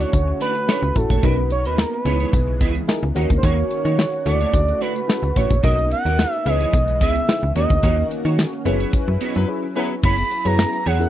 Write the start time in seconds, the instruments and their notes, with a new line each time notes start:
Already playing: analog synth pad D3 A3 C#4 F#4, fm electric piano C#4 E4 F#4 A4
0.00 clean electric guitar A3 D4 F#4 C#5, analog synth lead C#5, closed hi-hat
0.13 fm bass D2, muted clean electric guitar stroke, kick, closed hi-hat
0.28 muted clean electric guitar stroke
0.40 clean electric guitar A3 D4 F#4 D5, analog synth lead B4, closed hi-hat
0.55 muted clean electric guitar stroke, closed hi-hat
0.68 clean electric guitar A3 D4 F#4 C#5, fm electric piano C#4 E4 F#4 A4, snare, clap
0.82 fm bass C#2, muted clean electric guitar stroke, closed hi-hat
0.95 fm bass A1, fm electric piano C#4 E4 F#4 A4, analog synth lead A4, muted clean electric guitar stroke, kick, closed hi-hat
1.10 fm bass A#1, clean electric guitar A3 D4 F#4 C#5, kick, closed hi-hat
1.23 fm bass B1, analog synth pad A#3 B3 D#4, clean electric guitar B3 F#4 A#4 D#5, fm electric piano C#4 D#4 F#4 A#4, analog synth lead B4, kick, closed hi-hat
1.38 muted clean electric guitar stroke
1.50 analog synth lead C#5, muted clean electric guitar stroke, closed hi-hat
1.65 fm bass D#2, clean electric guitar B3 F#4 A#4 D#5, analog synth lead B4, closed hi-hat
1.78 analog synth lead A#4, muted clean electric guitar stroke, snare, clap
1.93 analog synth lead B4, muted clean electric guitar stroke
2.05 fm bass C#2, analog synth pad C#3 E3 G#3, clean electric guitar B3 E4 G#4 C#5, fm electric piano D#4 E4 G#4 B4, closed hi-hat
2.20 clean electric guitar B3 E4 G#4 C#5, closed hi-hat
2.33 fm bass B1, muted clean electric guitar stroke, kick, closed hi-hat
2.48 muted clean electric guitar stroke
2.61 fm bass C#2, clean electric guitar B3 E4 G#4 D#5, kick, closed hi-hat
2.75 muted clean electric guitar stroke, closed hi-hat
2.88 fm electric piano D#4 E4 G#4 A#4, snare, clap
3.03 fm bass C#2, muted clean electric guitar stroke
3.15 fm bass D#2, analog synth pad D#3 A#3 C#4 F#4, clean electric guitar A#3 D#4 F#4 C#5, fm electric piano C#4 D#4 F#4 A#4, closed hi-hat
3.30 fm bass D2, muted clean electric guitar stroke, kick, closed hi-hat
3.38 analog synth lead C5
3.43 fm bass D#2, clean electric guitar A#3 D#4 F#4 C#5, analog synth lead C#5, kick, closed hi-hat
3.58 muted clean electric guitar stroke
3.71 muted clean electric guitar stroke, closed hi-hat
3.85 fm bass D#3, clean electric guitar A#3 D#4 F#4 C#5, closed hi-hat
3.99 muted clean electric guitar stroke, snare, clap
4.13 muted clean electric guitar stroke
4.26 fm bass D2, fm electric piano C#3 E4 F#4 A4, analog synth pad C#3 A3, clean electric guitar A3 D4 F#4 C#5, analog synth lead D5, closed hi-hat
4.41 clean electric guitar A3 D4 F#4 C#5, closed hi-hat
4.53 fm bass D2, muted clean electric guitar stroke, kick, closed hi-hat
4.68 muted clean electric guitar stroke, closed hi-hat
4.81 clean electric guitar A3 D4 F#4 D5, analog synth lead B4, closed hi-hat
4.96 muted clean electric guitar stroke, closed hi-hat
5.08 fm electric piano C#4 E4 F#4 A4, snare, clap
5.23 fm bass C#2, muted clean electric guitar stroke, closed hi-hat
5.36 fm bass A1, clean electric guitar A3 D4 F#4 C#5, fm electric piano C#4 E4 F#4 B4, analog synth lead C#5, kick, closed hi-hat
5.51 fm bass A#1, muted clean electric guitar stroke, kick, closed hi-hat
5.63 fm bass B1, analog synth pad A#3 B3 D#4, fm electric piano C#4 D#4 F#4 A#4, clean electric guitar D#4 F#4 A#4 D#5, analog synth lead D#5, kick, closed hi-hat
5.78 muted clean electric guitar stroke, closed hi-hat
5.91 analog synth lead F#5, muted clean electric guitar stroke, closed hi-hat
6.05 fm bass D#2, clean electric guitar D#4 F#4 A#4 D#5, closed hi-hat
6.18 muted clean electric guitar stroke, snare, clap
6.32 analog synth lead E5, muted clean electric guitar stroke, closed hi-hat
6.45 fm bass C#2, analog synth pad C#3 E3 G#3, clean electric guitar B3 E4 G#4 C#5, fm electric piano D#4 E4 G#4 B4, analog synth lead D#5, closed hi-hat
6.60 clean electric guitar B3 E4 G#4 C#5, closed hi-hat
6.73 fm bass B1, muted clean electric guitar stroke, kick, closed hi-hat
6.88 muted clean electric guitar stroke, closed hi-hat
7.01 fm bass C#2, clean electric guitar B3 E4 G#4 D#5, analog synth lead E5, kick, closed hi-hat
7.15 muted clean electric guitar stroke, closed hi-hat
7.28 fm electric piano D#4 E4 G#4 B4, snare, clap
7.43 fm bass C#2, muted clean electric guitar stroke
7.55 fm bass D#2, analog synth pad D#3 A#3 C#4 F#4, clean electric guitar A#3 D#4 F#4 C#5, fm electric piano C#4 D#4 F#4 A#4, analog synth lead D#5, closed hi-hat
7.70 fm bass D2, muted clean electric guitar stroke, kick, closed hi-hat
7.83 fm bass D#2, clean electric guitar A#3 D#4 F#4 C#5, kick, closed hi-hat
7.98 muted clean electric guitar stroke
8.10 muted clean electric guitar stroke, closed hi-hat
8.25 fm bass D#3, clean electric guitar A#3 D#4 F#4 C#5, closed hi-hat
8.38 muted clean electric guitar stroke, snare, clap
8.53 muted clean electric guitar stroke
8.65 fm bass F#1, analog synth pad F#3 E4 B4, clean electric guitar B3 E4 F#4 C#5, fm electric piano C#4 E4 G#4 B4, closed hi-hat
8.80 clean electric guitar B3 E4 F#4 C#5, closed hi-hat
8.93 muted clean electric guitar stroke, kick, closed hi-hat
9.07 fm bass F#2, muted clean electric guitar stroke
9.21 clean electric guitar B3 E4 F#4 D#5, closed hi-hat
9.35 fm bass F#2, horn section F#3 B3 E4 B4, muted clean electric guitar stroke, closed hi-hat
9.48 fm electric piano C#4 E4 G#4 B4
9.63 muted clean electric guitar stroke
9.76 horn section F#3 B3 E4 B4, clean electric guitar B3 E4 F#4 C#5, fm electric piano C#4 E4 G#4 B4
9.90 muted clean electric guitar stroke
10.03 fm bass F#1, analog synth pad F#3 B3 E4 G#4, clean electric guitar B3 E4 G#4 C#5, analog synth lead B5, kick, crash
10.18 muted clean electric guitar stroke, closed hi-hat
10.31 muted clean electric guitar stroke, closed hi-hat
10.45 fm bass F#2, clean electric guitar B3 E4 G#4 C#5, fm electric piano C#4 E4 G#4 B4, analog synth lead A#5, closed hi-hat
10.58 muted clean electric guitar stroke, snare, clap
10.73 muted clean electric guitar stroke, closed hi-hat
10.86 fm bass E2, clean electric guitar B3 E4 G#4 C#5, analog synth lead F#5, closed hi-hat
11.00 fm electric piano C#4 E4 G#4 A#4, muted clean electric guitar stroke, closed hi-hat